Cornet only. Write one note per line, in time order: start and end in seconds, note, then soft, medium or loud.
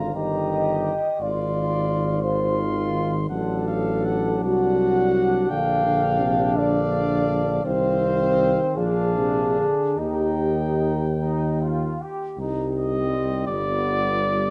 0.00 0.14 A#5 soft
0.14 0.92 A#5 medium
1.20 2.19 C6 soft
2.22 3.27 C6 medium
3.29 3.64 F#5 soft
3.68 4.07 F5 medium
4.05 4.44 F#5 medium
4.45 5.51 F#5 medium
5.50 6.57 G5 soft
6.56 7.64 F5 medium
7.65 8.61 F5 medium
8.78 9.65 F5 medium
9.98 12.02 G5 soft
12.76 13.44 D#5 medium
13.47 14.50 D5 medium